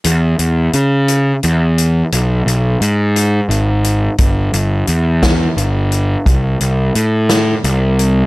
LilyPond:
<<
  \new Staff \with { instrumentName = "Picked electric bass" } { \clef bass \time 6/8 \key cis \phrygian \tempo 4. = 58 e,8 e,8 cis4 e,4 | b,,8 b,,8 gis,4 gis,,4 | g,,8 g,,8 e,4 g,,4 | c,8 c,8 a,4 c,4 | }
  \new DrumStaff \with { instrumentName = "Drums" } \drummode { \time 6/8 hh8 hh8 hh8 hh8 hh8 hh8 | hh8 hh8 hh8 hh8 hh8 hh8 | <hh bd>8 hh8 hh8 <hh bd sn>8 hh8 hh8 | <hh bd>8 hh8 hh8 <hh sn>8 hh8 hh8 | }
>>